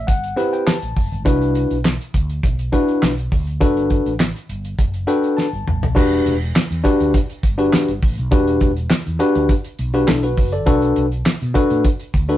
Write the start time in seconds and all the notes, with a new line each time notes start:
0.07 G1 F#5, kick, closed hi-hat, shaker
0.24 closed hi-hat, shaker
0.37 C4 E4 G4 B4, closed hi-hat, shaker
0.52 G5, closed hi-hat, shaker
0.67 A5, snare, clap, shaker
0.82 A1, closed hi-hat, shaker
0.96 F#1, kick, open hi-hat, shaker
1.12 G1, closed hi-hat, shaker
1.25 C2 D4 E4 F#4 B4, kick, closed hi-hat, shaker
1.41 closed hi-hat, shaker
1.54 closed hi-hat, shaker
1.70 B1, closed hi-hat, shaker
1.84 snare, clap, shaker
2.00 closed hi-hat, shaker
2.14 D2, kick, closed hi-hat, shaker
2.29 closed hi-hat, shaker
2.43 B1, kick, closed hi-hat, shaker
2.59 closed hi-hat, shaker
2.72 D4 E4 F#4 B4, kick, closed hi-hat, shaker
2.88 closed hi-hat, shaker
3.02 B1, snare, clap, shaker
3.17 closed hi-hat, shaker
3.32 D2, kick, open hi-hat, shaker
3.47 closed hi-hat, shaker
3.60 G1 D4 F#4 A4 B4, kick, closed hi-hat, shaker
3.77 closed hi-hat, shaker
3.90 kick, closed hi-hat, shaker
4.06 A1, closed hi-hat, shaker
4.19 snare, clap, shaker
4.35 closed hi-hat, shaker
4.49 G1, closed hi-hat, shaker
4.64 closed hi-hat, shaker
4.79 F#1, kick, closed hi-hat, shaker
4.94 closed hi-hat, shaker
5.07 D4 F#4 A4 B4 G5, closed hi-hat, shaker
5.23 closed hi-hat, shaker
5.37 A5, snare, shaker
5.53 G1, shaker
5.67 A1, mid tom, shaker
5.82 B1, floor tom, shaker
5.95 E1 D4 F#4 G4 B4, kick, crash, shaker
6.12 closed hi-hat, shaker
6.26 E1, closed hi-hat, shaker
6.41 closed hi-hat, shaker
6.55 snare, clap, shaker
6.70 E2, closed hi-hat, shaker
6.84 D4 F#4 G4 B4, kick, closed hi-hat, shaker
7.00 D2, closed hi-hat, shaker
7.14 kick, closed hi-hat, shaker
7.30 closed hi-hat, shaker
7.43 G1, kick, closed hi-hat, shaker
7.58 D4 F#4 G4 B4, closed hi-hat, shaker
7.73 snare, clap, shaker
7.88 G1, closed hi-hat, shaker
8.02 A1, kick, open hi-hat
8.18 B1, closed hi-hat, shaker
8.31 E1 D4 F#4 G4 B4, kick, closed hi-hat, shaker
8.47 closed hi-hat, shaker
8.61 E1, kick, closed hi-hat, shaker
8.76 closed hi-hat, shaker
8.90 muted fretless electric bass stroke, snare, clap, shaker
9.06 E2, closed hi-hat, shaker
9.19 D4 F#4 G4 B4, closed hi-hat, shaker
9.35 D2, closed hi-hat, shaker
9.49 kick, closed hi-hat, shaker
9.64 closed hi-hat, shaker
9.79 B1, closed hi-hat, shaker
9.93 D4 F#4 G4 B4, closed hi-hat, shaker
10.08 B1 E4 A4, snare, clap, shaker
10.23 F#4 B4, closed hi-hat, shaker
10.37 F#1, kick, open hi-hat
10.52 A4 D5, closed hi-hat, shaker
10.66 B1 D4 F#4 A4 B4, kick, closed hi-hat, shaker
10.82 closed hi-hat, shaker
10.96 B1, closed hi-hat, shaker
11.12 closed hi-hat, shaker
11.25 snare, clap, shaker
11.41 B2, closed hi-hat, shaker
11.54 D4 F#4 A4 B4, kick, closed hi-hat, shaker
11.70 A2, closed hi-hat, shaker
11.84 kick, closed hi-hat, shaker
12.00 closed hi-hat, shaker
12.14 D2, kick, closed hi-hat, shaker
12.28 D4 F#4 A4 B4, closed hi-hat, shaker